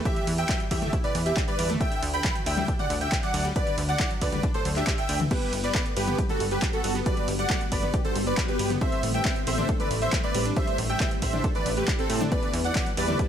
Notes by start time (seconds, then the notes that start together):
0.05 E3 G4 E5, kick, closed hi-hat
0.16 E3, closed hi-hat
0.27 E2 E3, open hi-hat, ride
0.38 E3 E5 G5, closed hi-hat
0.49 F#3, kick, clap, closed hi-hat
0.60 G3, closed hi-hat
0.71 E2 G3 G4 E5, kick, open hi-hat, ride
0.82 A3, closed hi-hat, mid tom
0.93 E4, kick, closed hi-hat
1.04 B2 B4 D5, closed hi-hat
1.15 E2 E3, open hi-hat, ride
1.26 E3 G4 E5, closed hi-hat
1.37 D3, kick, clap, closed hi-hat
1.48 G3 B4 D5, closed hi-hat
1.59 E2 G3, open hi-hat, ride
1.70 A3, closed hi-hat, mid tom
1.80 D3 E5 G5, kick, closed hi-hat
1.92 D3, closed hi-hat
2.02 D2 D3, open hi-hat, ride
2.13 D3 G5 B5, closed hi-hat
2.24 E3, kick, clap, closed hi-hat
2.35 F#3, closed hi-hat
2.46 D2 F#3 E5 G5, open hi-hat, ride
2.57 G3, closed hi-hat, mid tom
2.68 D4, kick, closed hi-hat
2.79 A2 D5 F#5, closed hi-hat, mid tom
2.90 D2 D3, open hi-hat, ride
3.01 D3 E5 G5, closed hi-hat
3.12 C3, kick, clap, closed hi-hat
3.23 F#3 D5 F#5, closed hi-hat
3.34 D2 F#3, open hi-hat, ride
3.45 G3, closed hi-hat
3.56 D3 B4 D5, kick, closed hi-hat
3.67 D3, closed hi-hat
3.78 D2 D3, open hi-hat, ride
3.89 D3 D5 F#5, closed hi-hat
4.00 E3, kick, clap, closed hi-hat
4.11 F#3, closed hi-hat
4.21 D2 F#3 B4 D5, kick, open hi-hat, ride
4.32 G3, closed hi-hat, mid tom
4.43 D4, kick, closed hi-hat
4.54 A2 A4 C5, closed hi-hat
4.65 D2 F#3, open hi-hat, ride
4.76 D4 G4 E5, clap, closed hi-hat
4.87 D3, kick, clap, closed hi-hat
4.98 D3 E5 G5, closed hi-hat
5.09 D2 D3, open hi-hat, ride
5.20 E3, closed hi-hat, mid tom
5.31 G3 B3 G4 B4, kick, closed hi-hat, crash
5.42 G3, closed hi-hat
5.53 G1 G3, open hi-hat, ride
5.64 G3 B4 D5, closed hi-hat
5.75 A3, kick, clap, closed hi-hat
5.86 B3, closed hi-hat
5.96 G1 G3 B3 G4 B4, open hi-hat, ride
6.07 B3, closed hi-hat, mid tom
6.18 G4, kick, closed hi-hat
6.29 D3 F#4 A4, closed hi-hat, mid tom
6.40 G1 G3, open hi-hat, ride
6.51 G3 G4 B4, closed hi-hat
6.62 F#3, kick, clap, closed hi-hat
6.73 B3 F#4 A4, closed hi-hat
6.84 G1 F#3 B3 F#4, open hi-hat, ride
6.95 B3, closed hi-hat
7.06 G3 B4 D5, kick, closed hi-hat
7.17 G3, closed hi-hat
7.28 G1 G3, open hi-hat, ride
7.39 G3 D5 F#5, closed hi-hat
7.50 A3, kick, clap, closed hi-hat
7.61 B3, closed hi-hat
7.72 G1 B3 B4 D5, kick, open hi-hat, ride
7.83 B3, closed hi-hat, mid tom
7.94 G4, kick, closed hi-hat
8.05 D3 A4 C5, closed hi-hat
8.16 G1 G3, open hi-hat, ride
8.27 G3 B4 D5, closed hi-hat
8.37 F#3, kick, clap, closed hi-hat
8.48 B3 G4 B4, closed hi-hat
8.59 G1 B3, open hi-hat, ride
8.70 B3, closed hi-hat, mid tom
8.81 A3 C4 C5 E5, kick, closed hi-hat
8.92 A3, closed hi-hat
9.03 A1 A3, open hi-hat, ride
9.14 A3 E5 G5, closed hi-hat
9.25 B3, kick, clap, closed hi-hat
9.36 C4, closed hi-hat
9.47 A1 A3 C4 A4 C5 E5, open hi-hat, ride
9.58 D4, closed hi-hat, mid tom
9.69 A4, kick, closed hi-hat
9.80 E3 B4 D5, closed hi-hat, mid tom
9.91 A1 A3, open hi-hat, ride
10.02 A3 C5 E5, closed hi-hat
10.13 G3, kick, clap, closed hi-hat
10.24 C4 B4 D5, closed hi-hat
10.35 A1 G3 C4 G4, open hi-hat, ride
10.45 D4, closed hi-hat
10.56 A3 C5 E5, kick, closed hi-hat
10.67 A3, closed hi-hat
10.78 A1 A3, open hi-hat, ride
10.89 A3 E5 G5, closed hi-hat
11.00 B3, kick, clap, closed hi-hat
11.11 C4, closed hi-hat
11.22 A1 C4 C5 E5, kick, open hi-hat, ride
11.33 D4, closed hi-hat, mid tom
11.44 A4, kick, closed hi-hat
11.55 E3 B4 D5, closed hi-hat
11.66 A1 A3, open hi-hat, ride
11.77 A3 G4 B4, closed hi-hat
11.88 kick, clap, closed hi-hat
11.99 C4 A4, closed hi-hat
12.10 A2 C4, open hi-hat, ride
12.21 D4, closed hi-hat, mid tom
12.32 E3 B3 B4 D5, kick, closed hi-hat
12.43 E3, closed hi-hat
12.54 E2 E3, open hi-hat, ride
12.64 E3 D5 F#5, closed hi-hat
12.75 F#3, kick, clap, closed hi-hat
12.86 G3, closed hi-hat
12.97 E2 G3 G4 B4 D5, open hi-hat, ride
13.08 A3, closed hi-hat, mid tom
13.19 E4, kick, closed hi-hat